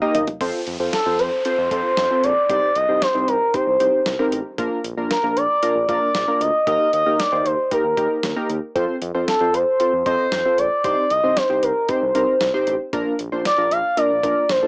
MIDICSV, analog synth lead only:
0, 0, Header, 1, 2, 480
1, 0, Start_track
1, 0, Tempo, 521739
1, 376, Time_signature, 4, 2, 24, 8
1, 13500, End_track
2, 0, Start_track
2, 0, Title_t, "Analog synth lead"
2, 0, Program_c, 0, 81
2, 857, Note_on_c, 0, 69, 84
2, 1097, Note_on_c, 0, 72, 94
2, 1111, Note_off_c, 0, 69, 0
2, 1331, Note_off_c, 0, 72, 0
2, 1336, Note_on_c, 0, 72, 96
2, 1559, Note_off_c, 0, 72, 0
2, 1576, Note_on_c, 0, 72, 101
2, 2057, Note_on_c, 0, 74, 102
2, 2071, Note_off_c, 0, 72, 0
2, 2290, Note_off_c, 0, 74, 0
2, 2296, Note_on_c, 0, 74, 107
2, 2536, Note_on_c, 0, 75, 107
2, 2549, Note_off_c, 0, 74, 0
2, 2776, Note_on_c, 0, 72, 104
2, 2790, Note_off_c, 0, 75, 0
2, 3016, Note_on_c, 0, 70, 98
2, 3030, Note_off_c, 0, 72, 0
2, 3257, Note_on_c, 0, 72, 94
2, 3271, Note_off_c, 0, 70, 0
2, 3977, Note_off_c, 0, 72, 0
2, 4697, Note_on_c, 0, 70, 91
2, 4936, Note_on_c, 0, 74, 105
2, 4950, Note_off_c, 0, 70, 0
2, 5411, Note_off_c, 0, 74, 0
2, 5417, Note_on_c, 0, 74, 112
2, 5897, Note_on_c, 0, 75, 106
2, 5911, Note_off_c, 0, 74, 0
2, 6131, Note_off_c, 0, 75, 0
2, 6136, Note_on_c, 0, 75, 109
2, 6360, Note_off_c, 0, 75, 0
2, 6377, Note_on_c, 0, 75, 103
2, 6617, Note_on_c, 0, 74, 106
2, 6631, Note_off_c, 0, 75, 0
2, 6858, Note_on_c, 0, 72, 94
2, 6872, Note_off_c, 0, 74, 0
2, 7098, Note_on_c, 0, 70, 90
2, 7111, Note_off_c, 0, 72, 0
2, 7817, Note_off_c, 0, 70, 0
2, 8537, Note_on_c, 0, 69, 85
2, 8778, Note_on_c, 0, 72, 98
2, 8792, Note_off_c, 0, 69, 0
2, 9252, Note_off_c, 0, 72, 0
2, 9258, Note_on_c, 0, 72, 100
2, 9738, Note_on_c, 0, 74, 104
2, 9752, Note_off_c, 0, 72, 0
2, 9972, Note_off_c, 0, 74, 0
2, 9978, Note_on_c, 0, 74, 107
2, 10217, Note_on_c, 0, 75, 109
2, 10231, Note_off_c, 0, 74, 0
2, 10458, Note_on_c, 0, 72, 104
2, 10472, Note_off_c, 0, 75, 0
2, 10698, Note_on_c, 0, 70, 95
2, 10712, Note_off_c, 0, 72, 0
2, 10938, Note_on_c, 0, 72, 94
2, 10952, Note_off_c, 0, 70, 0
2, 11657, Note_off_c, 0, 72, 0
2, 12377, Note_on_c, 0, 74, 103
2, 12618, Note_on_c, 0, 77, 107
2, 12631, Note_off_c, 0, 74, 0
2, 12857, Note_on_c, 0, 74, 106
2, 12871, Note_off_c, 0, 77, 0
2, 13337, Note_on_c, 0, 72, 101
2, 13351, Note_off_c, 0, 74, 0
2, 13500, Note_off_c, 0, 72, 0
2, 13500, End_track
0, 0, End_of_file